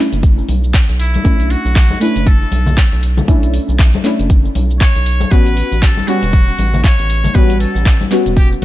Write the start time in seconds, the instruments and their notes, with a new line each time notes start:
Already playing: synth stab A3 C#4
0.00 synth stab D4 E4
0.13 analog synth bass F#1, closed hi-hat, cabasa
0.23 kick, closed hi-hat, cabasa
0.38 cabasa
0.49 analog synth bass B1, open hi-hat, high conga
0.64 cabasa
0.74 kick, clap, closed hi-hat, cabasa
0.89 analog synth bass B1, closed hi-hat, cabasa
0.99 muted trumpet E4, open hi-hat
1.14 closed hi-hat, high conga, cabasa
1.24 analog synth bass B1, synth stab A3 C#4 D4 E4, kick, closed hi-hat, cabasa
1.40 closed hi-hat, cabasa
1.50 muted trumpet F#4, open hi-hat
1.65 analog synth bass B1, cabasa
1.76 kick, clap, closed hi-hat, cabasa
1.90 high conga, cabasa
2.00 synth stab A3 C#4 D4 E4, muted trumpet B4, open hi-hat
2.16 analog synth bass F#1, closed hi-hat, cabasa
2.27 muted trumpet A4, kick, closed hi-hat, cabasa
2.42 cabasa
2.51 analog synth bass B1, open hi-hat, high conga
2.66 low conga, cabasa
2.77 kick, clap, closed hi-hat, cabasa
2.92 analog synth bass B1, closed hi-hat, cabasa
3.03 open hi-hat
3.17 closed hi-hat, high conga, low conga, cabasa
3.27 analog synth bass B1, synth stab A3 C#4 D4 E4, kick, closed hi-hat, cabasa
3.43 closed hi-hat, cabasa
3.54 open hi-hat
3.69 analog synth bass B1, cabasa
3.79 kick, clap, closed hi-hat, cabasa
3.94 closed hi-hat, high conga, cabasa
4.03 synth stab A3 C#4 D4 E4, clap, open hi-hat
4.19 analog synth bass F#1, closed hi-hat, cabasa
4.30 kick, closed hi-hat, cabasa
4.45 cabasa
4.55 analog synth bass B1, open hi-hat, high conga
4.71 cabasa
4.81 muted trumpet C#5, kick, clap, closed hi-hat, cabasa
4.96 analog synth bass B1, closed hi-hat, cabasa
5.06 open hi-hat
5.20 closed hi-hat, high conga, cabasa
5.30 analog synth bass A1, synth stab G3 B3 C#4 F#4, muted trumpet B4, kick, closed hi-hat, cabasa
5.46 closed hi-hat, cabasa
5.57 open hi-hat
5.72 analog synth bass A1, cabasa
5.82 muted trumpet A4, kick, clap, closed hi-hat, cabasa
5.97 high conga, cabasa
6.07 synth stab G3 B3 C#4 F#4, muted trumpet F#4, open hi-hat
6.23 analog synth bass E1, closed hi-hat, cabasa
6.33 kick, closed hi-hat, cabasa
6.49 cabasa
6.59 analog synth bass A1, open hi-hat, high conga
6.74 low conga, cabasa
6.84 muted trumpet C#5, kick, clap, closed hi-hat, cabasa
6.99 analog synth bass A1, closed hi-hat, cabasa
7.10 open hi-hat
7.24 closed hi-hat, high conga, low conga, cabasa
7.34 analog synth bass A1, synth stab G3 B3 C#4 F#4, muted trumpet B4, kick, closed hi-hat, cabasa
7.50 closed hi-hat, cabasa
7.60 muted trumpet A4, open hi-hat
7.75 analog synth bass A1, cabasa
7.86 kick, clap, closed hi-hat, cabasa
8.01 high conga, cabasa
8.10 synth stab G3 B3 C#4 F#4, clap, open hi-hat
8.26 analog synth bass E1, closed hi-hat, cabasa
8.37 muted trumpet G4, kick, closed hi-hat, cabasa
8.52 cabasa